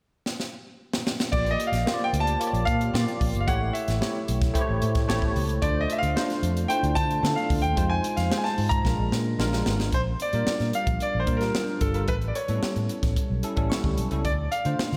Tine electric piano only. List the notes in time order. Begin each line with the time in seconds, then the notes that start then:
1.32 A#3 F4 G4 D5
1.86 A#3 F4 G4 C5
1.94 D5
2.39 A#3 F4 G4 C#5
2.47 D5
2.94 A#3 F4 G4 D5
3.48 A3 E4 G4 C#5
4.01 A3 E4 G4 C#5
4.53 A3 E4 G4 C5
4.61 C#5
5.08 A3 E4 G4 C#5 A5
5.62 A3 D4 F4 C5
6.16 A3 D4 F4 C5
6.69 A3 D4 E4 C5
6.76 F4
7.23 A3 D4 F4 A4
7.76 G#3 D#4 F4 C5
8.30 G#3 D#4 F4 C5
8.85 G#3 D4 F4 A#4
9.39 G#3 D4 F4 A#4
10.33 G3 D4 F4 A#4
11.26 G3 D4 F4 A#4
11.41 G3 D4 F4 A#4
11.94 G3 D4 F4 A#4
12.48 G3 B3 E4 A4
12.55 C#4
13.43 G3 C#4 E4 A4
13.56 G3 C#4 E4 A4
13.70 C#6
14.11 G3 C#4 E4 A4
14.65 A3 D4 F4 C5